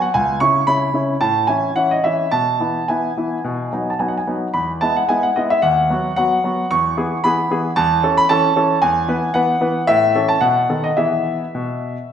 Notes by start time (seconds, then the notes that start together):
0.02 F#5
0.14 C#2 G#5
0.40 C#3 C#4 E4 C#6
0.67 C#3 C#4 E4 B5
0.94 C#3 C#4 E4
1.21 A2 A5
1.47 E3 C#4 E4 G#5
1.76 E3 C#4 E4 F#5
1.91 D#5
2.04 E3 C#4 E4 E5
2.31 B2 A5
2.60 E3 B3 E4
2.88 E3 B3 E4 G#5
3.17 E3 B3 E4
3.44 B2
3.73 F#3 B3 D#4
3.90 A5
3.99 F#3 B3 D#4 G#5
4.08 F#5
4.17 G#5
4.27 F#3 B3 D#4
4.54 E2 B5
4.81 G#3 B3 E4 A5
4.96 F#5
5.09 G#3 B3 E4 G#5
5.23 F#5
5.36 G#3 B3 E4 D#5
5.50 E5
5.62 D#2 F#5
5.90 F#3 B3 F#4
6.16 F#3 B3 F#4 F#5
6.44 F#3 B3 F#4
6.71 E2 C#6
6.97 E3 B3 G#4
7.24 E3 B3 G#4 B5
7.51 E3 B3 G#4
7.76 E2 A5
8.03 E3 C#4 A4
8.17 B5
8.29 E3 C#4 A4 A5
8.56 E3 C#4 A4
8.82 E2 G#5
9.08 E3 B3 B4
9.34 E3 B3 B4 F#5
9.61 E3 B3 B4
9.87 A2 E5
10.15 E3 C#4 A4
10.28 A5
10.41 B2 F#5
10.69 D#3 B3 A4
10.84 D#5
10.97 E3 B3 G#4 E5
11.55 B2